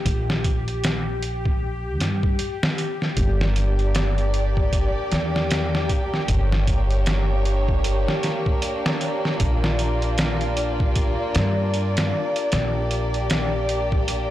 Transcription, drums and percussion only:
0.06 kick, closed hi-hat
0.30 snare
0.44 kick, closed hi-hat
0.68 closed hi-hat
0.84 snare, closed hi-hat
1.23 closed hi-hat
1.45 kick
2.00 snare, closed hi-hat
2.23 kick
2.39 closed hi-hat
2.63 snare
2.78 closed hi-hat
3.02 snare
3.17 kick, closed hi-hat
3.41 snare
3.56 closed hi-hat
3.79 closed hi-hat
3.95 snare, closed hi-hat
4.18 closed hi-hat
4.34 closed hi-hat
4.57 kick
4.73 kick, closed hi-hat
5.12 snare, closed hi-hat
5.36 snare
5.51 snare, closed hi-hat
5.75 snare
5.89 kick, closed hi-hat
6.14 snare
6.28 kick, closed hi-hat
6.52 snare
6.67 kick, closed hi-hat
6.91 closed hi-hat
7.06 snare, closed hi-hat
7.45 closed hi-hat
7.68 kick
7.84 closed hi-hat
8.08 snare
8.23 snare, closed hi-hat
8.46 kick
8.62 closed hi-hat
8.86 snare
9.01 closed hi-hat
9.25 snare
9.40 kick, closed hi-hat
9.64 snare
9.79 closed hi-hat
10.02 closed hi-hat
10.18 snare, closed hi-hat
10.41 closed hi-hat
10.57 closed hi-hat
10.80 kick
10.96 kick, closed hi-hat
11.35 snare, closed hi-hat
11.74 closed hi-hat
11.97 snare, closed hi-hat
12.36 closed hi-hat
12.52 snare, closed hi-hat
12.91 closed hi-hat
13.14 closed hi-hat
13.30 snare, closed hi-hat
13.69 closed hi-hat
13.92 kick
14.08 closed hi-hat

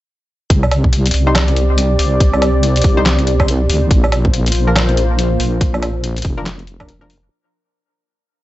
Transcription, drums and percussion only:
0.50 kick, closed hi-hat
0.63 low woodblock
0.71 closed hi-hat, low woodblock
0.84 kick
0.93 closed hi-hat
1.06 closed hi-hat
1.11 closed hi-hat, open hi-hat
1.35 snare, clap, closed hi-hat, low woodblock
1.48 closed hi-hat
1.56 closed hi-hat
1.78 closed hi-hat
1.99 open hi-hat
2.20 kick, closed hi-hat
2.33 low woodblock
2.42 closed hi-hat, low woodblock
2.63 closed hi-hat
2.76 closed hi-hat
2.82 kick, closed hi-hat, open hi-hat
3.06 snare, clap, closed hi-hat
3.19 closed hi-hat
3.27 closed hi-hat
3.40 kick, low woodblock
3.48 closed hi-hat
3.70 open hi-hat
3.91 kick, closed hi-hat
4.04 low woodblock
4.12 closed hi-hat, low woodblock
4.25 kick
4.34 closed hi-hat
4.46 closed hi-hat
4.52 closed hi-hat, open hi-hat
4.76 snare, clap, closed hi-hat, low woodblock
4.89 closed hi-hat
4.97 closed hi-hat
5.19 closed hi-hat
5.40 open hi-hat
5.61 kick, closed hi-hat
5.74 low woodblock
5.83 closed hi-hat, low woodblock
6.04 closed hi-hat
6.17 closed hi-hat
6.22 kick, closed hi-hat, open hi-hat
6.46 snare, clap, closed hi-hat
6.59 closed hi-hat
6.67 closed hi-hat
6.80 kick, low woodblock
6.89 closed hi-hat
7.10 open hi-hat

